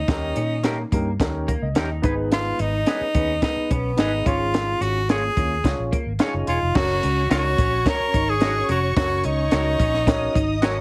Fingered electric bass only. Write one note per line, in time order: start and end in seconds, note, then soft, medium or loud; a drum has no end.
0.08 0.32 D#2 loud
0.36 0.84 A#2 medium
0.92 1.16 G2 medium
1.20 1.55 D#2 medium
1.62 1.74 C#2 medium
1.76 1.99 D#2 medium
2.04 2.51 G#1 medium
2.59 2.83 G#1 medium
3.01 muted fingered electric bass stroke soft
3.15 3.39 D#2 medium
3.56 muted fingered electric bass stroke soft
3.71 3.94 B1 medium
3.98 4.22 G#1 medium
4.26 4.73 G#1 medium
4.81 5.28 G#1 medium
5.37 5.61 D#2 medium
5.64 5.76 C#2 medium
5.78 5.90 A#1 medium
6.06 6.18 G#1 medium
6.34 6.46 F#1 medium
6.47 6.59 E1 medium
6.62 6.74 F1 medium
6.75 6.99 F#1 medium
7.04 7.27 C#2 medium
7.31 7.54 C#2 medium
7.59 7.82 A#1 medium
8.00 muted fingered electric bass stroke medium
8.14 8.61 G#1 medium
8.69 8.93 F1 medium
8.97 9.20 F#1 loud
9.25 9.48 C#2 loud
9.52 9.76 C#2 medium
9.80 10.27 A#1 medium
10.35 10.81 G#1 loud